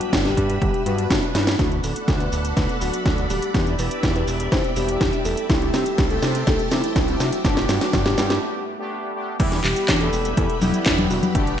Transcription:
Already playing: analog polysynth G3 B3 D4 G4, string machine G3 B4 E5 B5, soft synth lead F#4
0.01 closed hi-hat
0.13 analog synth bass G1, kick, snare, closed hi-hat
0.25 soft synth lead G4, snare, closed hi-hat
0.37 analog synth bass G2, kick, closed hi-hat
0.50 closed hi-hat
0.62 analog synth bass G1, soft synth lead G4, kick, closed hi-hat
0.74 closed hi-hat
0.86 analog synth bass G2, analog polysynth G3 B3 D4 B4, soft synth lead F#4, closed hi-hat
0.98 closed hi-hat
1.10 analog synth bass G1, kick, snare, closed hi-hat
1.23 closed hi-hat
1.35 analog synth bass G2, soft synth lead E4, snare, closed hi-hat
1.47 snare, closed hi-hat
1.59 analog synth bass D2, analog polysynth A3 B3 D4 F#4, soft synth lead F#4, string machine A4 D5 F#5 B5, kick, snare, closed hi-hat, cabasa
1.72 closed hi-hat, cabasa
1.84 analog synth bass D1, soft synth lead A4, open hi-hat, cabasa
1.96 closed hi-hat, cabasa
2.08 analog synth bass D2, kick, snare, closed hi-hat, cabasa
2.20 soft synth lead B4, closed hi-hat, cabasa
2.32 analog synth bass D1, open hi-hat, cabasa
2.45 closed hi-hat, cabasa
2.57 analog synth bass D2, soft synth lead B4, kick, snare, closed hi-hat, cabasa
2.69 closed hi-hat, cabasa
2.81 analog synth bass D1, analog polysynth A3 B3 D4 F#4, soft synth lead F#4, open hi-hat, cabasa
2.94 closed hi-hat, cabasa
3.06 analog synth bass D2, kick, snare, closed hi-hat, cabasa
3.18 closed hi-hat, cabasa
3.30 analog synth bass D1, soft synth lead G4, open hi-hat, cabasa
3.42 closed hi-hat, cabasa
3.54 analog synth bass E2, analog polysynth B3 D4 E4 G4, string machine G4 E5, soft synth lead G4, kick, snare, closed hi-hat, cabasa
3.67 closed hi-hat, cabasa
3.79 analog synth bass E1, soft synth lead B4, open hi-hat, cabasa
3.91 closed hi-hat, cabasa
4.03 analog synth bass E2, kick, snare, closed hi-hat, cabasa
4.16 soft synth lead B4, closed hi-hat, cabasa
4.28 analog synth bass E1, open hi-hat, cabasa
4.40 closed hi-hat, cabasa
4.52 analog synth bass E2, soft synth lead C5, kick, snare, closed hi-hat, cabasa
4.64 closed hi-hat, cabasa
4.76 analog synth bass E1, analog polysynth B3 D4 E4 G4, soft synth lead G4, open hi-hat, cabasa
4.89 closed hi-hat, cabasa
5.01 analog synth bass E2, kick, snare, closed hi-hat, cabasa
5.13 closed hi-hat, cabasa
5.25 analog synth bass E1, soft synth lead A4, open hi-hat, cabasa
5.37 closed hi-hat, cabasa
5.49 analog synth bass C2, analog polysynth A3 C4 E4 G4, soft synth lead E4, string machine G4 C5 A5, kick, snare, closed hi-hat, cabasa
5.62 closed hi-hat, cabasa
5.74 analog synth bass C3, soft synth lead G4, snare, open hi-hat, cabasa
5.86 closed hi-hat, cabasa
5.98 analog synth bass C2, kick, snare, closed hi-hat, cabasa
6.10 soft synth lead A4, closed hi-hat, cabasa
6.23 analog synth bass C3, snare, open hi-hat, cabasa
6.35 closed hi-hat, cabasa
6.47 analog synth bass C2, soft synth lead A4, kick, snare, closed hi-hat, cabasa
6.59 closed hi-hat, cabasa
6.71 analog synth bass C3, analog polysynth A3 C4 E4 G4, soft synth lead E4, snare, open hi-hat, cabasa
6.84 closed hi-hat, cabasa
6.96 analog synth bass C2, kick, snare, closed hi-hat, cabasa
7.08 closed hi-hat, cabasa
7.20 analog synth bass C3, soft synth lead F#4, snare, open hi-hat, cabasa
7.33 closed hi-hat, cabasa
7.45 analog synth bass G1, analog polysynth A3 B3 D4 G4, soft synth lead D4, string machine G4 B4 D5, kick, snare, closed hi-hat, cabasa
7.57 snare, closed hi-hat, cabasa
7.69 analog synth bass G2, soft synth lead F#4, snare, open hi-hat, cabasa
7.81 snare, closed hi-hat, cabasa
7.93 analog synth bass G1, kick, snare, closed hi-hat, cabasa
8.06 soft synth lead G4, snare, closed hi-hat, cabasa
8.18 analog synth bass G2, snare, open hi-hat, cabasa
8.30 snare, closed hi-hat, cabasa
8.79 analog polysynth A3 B3 D4 G4
9.15 analog polysynth A3 B3 D4 G4
9.39 analog synth bass E2, analog polysynth G3 B3 E4 G4, soft synth lead E4, string machine G4 B4 E5 B5, kick, closed hi-hat, crash, cabasa
9.52 snare, closed hi-hat
9.64 analog synth bass E1, soft synth lead G4, clap, open hi-hat, cabasa
9.76 closed hi-hat, cabasa
9.89 analog synth bass E2, kick, snare, clap, closed hi-hat, cabasa
10.01 soft synth lead A4, closed hi-hat
10.13 analog synth bass E1, open hi-hat, cabasa
10.25 closed hi-hat, cabasa
10.37 analog synth bass E2, soft synth lead A4, kick, closed hi-hat, cabasa
10.50 closed hi-hat
10.62 analog synth bass E1, analog polysynth G3 B3 E4 G4, soft synth lead E4, open hi-hat, high conga, cabasa
10.74 closed hi-hat, cabasa
10.86 analog synth bass E2, kick, snare, clap, closed hi-hat, cabasa
10.98 closed hi-hat, high conga
11.10 analog synth bass E1, soft synth lead F#4, open hi-hat, cabasa
11.23 closed hi-hat, high conga, cabasa
11.35 analog synth bass G1, analog polysynth A3 B3 D4 G4, soft synth lead D4, string machine D5 A5, kick, closed hi-hat, cabasa
11.47 closed hi-hat

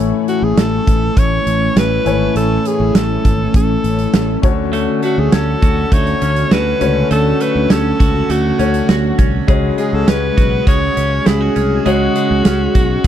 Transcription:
Already playing: fingered electric bass A1, grand piano A2 A3 E4 C#5 G#5, string machine E3 A3 C#4
0.28 alto saxophone F#4, closed hi-hat
0.42 fingered electric bass A1, alto saxophone G#4
0.57 fingered electric bass A1, alto saxophone A4, snare, closed hi-hat
0.87 fingered electric bass A1, kick, closed hi-hat
1.17 fingered electric bass A1, alto saxophone C#5, kick, closed hi-hat
1.47 fingered electric bass A1, closed hi-hat
1.76 fingered electric bass A1, alto saxophone B4, snare, closed hi-hat
2.05 fingered electric bass G#1, grand piano A2 A3 E4 C#5 G#5, closed hi-hat
2.35 fingered electric bass A1, alto saxophone A4, closed hi-hat
2.65 alto saxophone G#4, closed hi-hat
2.80 fingered electric bass A1
2.95 fingered electric bass A1, alto saxophone A4, snare, closed hi-hat
3.25 fingered electric bass G#1, kick, closed hi-hat
3.54 fingered electric bass A1, alto saxophone A4, kick, closed hi-hat
3.84 fingered electric bass A1, closed hi-hat
3.99 closed hi-hat
4.13 fingered electric bass A1, snare, closed hi-hat
4.42 fingered electric bass D2, string machine D3 F#4, grand piano D3 A3 C#4 F#4 C#5, kick, closed hi-hat
4.73 clean electric guitar A3, closed hi-hat
5.03 clean electric guitar A3, alto saxophone F#4, closed hi-hat
5.18 fingered electric bass D2, alto saxophone G#4
5.32 fingered electric bass D2, clean electric guitar C#4, alto saxophone A4, snare, closed hi-hat
5.62 fingered electric bass D2, clean electric guitar F#4, kick, closed hi-hat
5.92 fingered electric bass D2, clean electric guitar A3, alto saxophone C#5, kick, closed hi-hat
6.07 closed hi-hat
6.22 fingered electric bass D2, clean electric guitar C#4, closed hi-hat
6.36 closed hi-hat
6.51 fingered electric bass D2, clean electric guitar F#4, alto saxophone B4, snare, closed hi-hat
6.80 fingered electric bass C#2, grand piano D3 A3 C#4 F#4 C#5, clean electric guitar C#4, string machine C#4, closed hi-hat
7.11 fingered electric bass D2, clean electric guitar A3, alto saxophone A4, closed hi-hat
7.40 clean electric guitar A3, alto saxophone B4, closed hi-hat
7.55 fingered electric bass D2
7.70 fingered electric bass D2, clean electric guitar C#4, alto saxophone A4, snare, closed hi-hat
8.00 fingered electric bass C#2, clean electric guitar F#4, kick, closed hi-hat
8.30 fingered electric bass D2, clean electric guitar A3, alto saxophone F#4, closed hi-hat
8.59 fingered electric bass D2, grand piano D3 A3 F#4 C#5, clean electric guitar C#4, closed hi-hat
8.74 closed hi-hat
8.89 fingered electric bass D2, clean electric guitar F#4, snare, closed hi-hat
9.19 fingered electric bass C2, clean electric guitar C#4, kick, closed hi-hat
9.47 fingered electric bass C#2, string machine C#3 G#3, grand piano C#3 G#3 C#4 F#4 C#5, clean electric guitar G#3, kick, closed hi-hat
9.78 clean electric guitar G#3, alto saxophone G#4, closed hi-hat
9.93 fingered electric bass C#2, alto saxophone A4
10.07 fingered electric bass C#2, clean electric guitar C#4, alto saxophone B4, snare, closed hi-hat
10.37 fingered electric bass B1, clean electric guitar F#4, kick, closed hi-hat
10.67 fingered electric bass C#2, clean electric guitar G#3, alto saxophone C#5, kick, closed hi-hat
10.97 fingered electric bass C#2, clean electric guitar C#4, closed hi-hat
11.26 fingered electric bass C#2, clean electric guitar E4, alto saxophone G#4, snare, closed hi-hat
11.41 clean electric guitar F#4
11.56 fingered electric bass C2, clean electric guitar C#4, closed hi-hat
11.85 fingered electric bass C#2, grand piano C#3 G#3 C#4 F#4 C#5, clean electric guitar G#3, alto saxophone F#4, closed hi-hat
12.16 clean electric guitar G#3, closed hi-hat
12.31 fingered electric bass C#2
12.45 fingered electric bass C#2, clean electric guitar C#4, snare, closed hi-hat
12.75 fingered electric bass B1, clean electric guitar F#4, kick, closed hi-hat

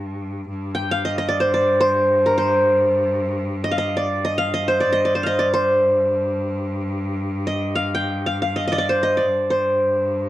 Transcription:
Already playing: cello G2
0.49 cello G2
0.75 qanun G5
0.91 qanun F5
1.05 qanun D#5
1.18 qanun D#5
1.29 qanun D5
1.40 qanun C5
1.54 qanun D5
1.80 qanun C5
2.26 qanun A#4
2.38 qanun C5
3.64 qanun D#5
3.71 qanun F5
3.78 qanun D#5
3.97 qanun D5
4.25 qanun D#5
4.38 qanun F5
4.54 qanun D#5
4.68 qanun C5
4.80 qanun D5
4.88 cello G2
4.93 qanun D#5
5.05 qanun D5
5.15 qanun C5
5.23 qanun D#5 F5
5.39 qanun D5
5.54 qanun C5
7.47 qanun D#5
7.75 qanun F5
7.95 qanun G5
8.26 qanun F5
8.42 qanun F5
8.56 qanun D#5
8.68 qanun D#5
8.72 qanun D5 D#5
8.78 qanun D5
8.89 qanun C5
9.03 qanun D#5
9.17 qanun D5
9.26 cello G2
9.50 qanun C5

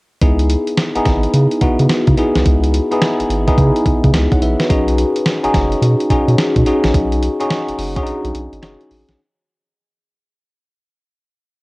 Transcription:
0.21 analog synth bass C#2, tine electric piano B3 D#4 E4 G#4, kick, closed hi-hat
0.39 closed hi-hat
0.50 closed hi-hat
0.67 closed hi-hat
0.77 snare, closed hi-hat
0.95 analog synth bass G#1, tine electric piano B3 D#4 E4 G#4, closed hi-hat
1.05 analog synth bass G#1, kick, snare, closed hi-hat
1.23 closed hi-hat
1.34 analog synth bass C#3, closed hi-hat
1.51 closed hi-hat
1.61 analog synth bass C#3, tine electric piano B3 D#4 E4 F#4, kick, closed hi-hat
1.79 analog synth bass C#3, closed hi-hat
1.89 snare, closed hi-hat
2.07 analog synth bass C#3, kick, closed hi-hat
2.17 tine electric piano B3 D#4 E4 G#4, closed hi-hat
2.35 analog synth bass C2, snare, closed hi-hat
2.46 analog synth bass C#2, kick, closed hi-hat
2.64 closed hi-hat
2.74 closed hi-hat
2.91 tine electric piano B3 D#4 E4 G#4, closed hi-hat
3.02 snare, closed hi-hat
3.20 analog synth bass G#1, closed hi-hat
3.30 analog synth bass G#1, closed hi-hat
3.47 tine electric piano B3 D#4 E4 G#4, kick, closed hi-hat
3.58 analog synth bass C#3, kick, closed hi-hat
3.76 closed hi-hat
3.86 analog synth bass C#3, kick, closed hi-hat
4.04 analog synth bass C#3, kick, closed hi-hat
4.14 analog synth bass C#2, snare, closed hi-hat
4.32 tine electric piano C#5 F#5, kick, closed hi-hat
4.42 analog synth bass A#1, tine electric piano B4 E5, closed hi-hat
4.60 tine electric piano F#4 B4, snare, closed hi-hat
4.70 analog synth bass B1, tine electric piano C#4 D#4 F#4 G#4, kick, closed hi-hat
4.88 closed hi-hat
4.98 closed hi-hat
5.16 closed hi-hat
5.26 snare, closed hi-hat
5.44 analog synth bass F#1, tine electric piano C#4 D#4 F#4 G#4, closed hi-hat
5.54 analog synth bass F#1, kick, snare, closed hi-hat
5.72 closed hi-hat
5.82 analog synth bass B2, closed hi-hat
6.00 closed hi-hat
6.10 analog synth bass B2, tine electric piano C#4 D#4 F#4 G#4, kick, closed hi-hat
6.28 analog synth bass B2, closed hi-hat
6.38 snare, closed hi-hat
6.56 analog synth bass B2, kick, closed hi-hat
6.66 tine electric piano C#4 D#4 F#4 G#4, closed hi-hat
6.84 analog synth bass A#1, snare, closed hi-hat
6.94 analog synth bass B1, kick, closed hi-hat
7.12 closed hi-hat
7.23 closed hi-hat
7.40 tine electric piano C#4 D#4 F#4 G#4, closed hi-hat
7.50 snare, closed hi-hat
7.69 analog synth bass F#1, closed hi-hat
7.79 analog synth bass F#1, open hi-hat
7.96 tine electric piano C#4 D4 F#4 G#4, kick, closed hi-hat
8.03 tine electric piano D#4, closed hi-hat
8.24 analog synth bass B1, closed hi-hat
8.35 analog synth bass B1, closed hi-hat
8.53 analog synth bass G#1, closed hi-hat
8.62 analog synth bass F#1, tine electric piano C#4 D#4 F#4 G#4, snare, closed hi-hat
8.81 closed hi-hat
8.91 analog synth bass A1, open hi-hat
9.09 analog synth bass A#1, snare, closed hi-hat

